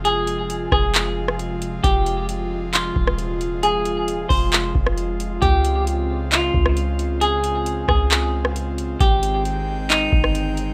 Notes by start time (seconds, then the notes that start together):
Already playing: F1 C3 F3 G#3 F4
0.05 G#4, closed hi-hat
0.27 closed hi-hat
0.50 closed hi-hat
0.72 F1 G#4, kick, cross-stick
0.94 clap, closed hi-hat
1.28 cross-stick
1.39 closed hi-hat
1.62 closed hi-hat
1.84 F1 G4, kick, closed hi-hat
2.06 closed hi-hat
2.29 closed hi-hat
2.73 F4, clap, closed hi-hat
2.96 D#1, kick
3.07 cross-stick
3.18 closed hi-hat
3.41 closed hi-hat
3.63 G#4, closed hi-hat
3.85 closed hi-hat
4.08 closed hi-hat
4.29 F1 C5, kick, open hi-hat
4.53 clap, closed hi-hat
4.75 F1, kick
4.86 cross-stick
4.98 closed hi-hat
5.20 closed hi-hat
5.42 C#2 C#3 C4 G4, kick, closed hi-hat
5.65 closed hi-hat
5.87 closed hi-hat
6.32 F4, clap, closed hi-hat
6.54 C#2, kick
6.66 cross-stick
6.77 closed hi-hat
6.99 closed hi-hat
7.21 G#4, closed hi-hat
7.44 closed hi-hat
7.66 closed hi-hat
7.88 C#2 G#4, kick, cross-stick
8.11 clap, closed hi-hat
8.45 cross-stick
8.56 closed hi-hat
8.78 closed hi-hat
9.00 G#1 D#3 G#3 G4 G5, kick, closed hi-hat
9.23 closed hi-hat
9.45 closed hi-hat
9.90 D#4, clap, closed hi-hat
10.12 G1, kick
10.24 cross-stick
10.35 closed hi-hat
10.57 closed hi-hat